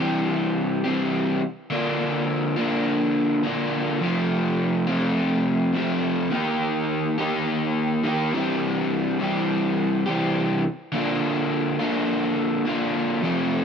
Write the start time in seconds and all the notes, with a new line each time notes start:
Already playing: C3
0.00 E3 G3 C4 G4
0.84 C3 E3 G3 C4 G4
1.70 D3 A#3 D4 F4
2.56 D3 A#3 D4 F4
3.43 D3 A#3 D4 F4
4.01 F2 C3 F3 A3 C4 F4
4.87 F2 C3 F3 A3 C4 F4
5.74 F2 C3 F3 A3 C4 F4
6.31 D#3 A#3 D#4 G4
7.18 D#3 A#3 D#4 G4
8.04 D#3 A#3 D#4 G4
8.32 C3 E3 G3 C4 G4
9.19 C3 E3 G3 C4 G4
10.06 C3 E3 G3 C4 G4
10.92 D3 A#3 D4 F4
11.80 D3 A#3 D4 F4
12.66 D3 A#3 D4 F4
13.22 F2 C3 F3 A3 C4 F4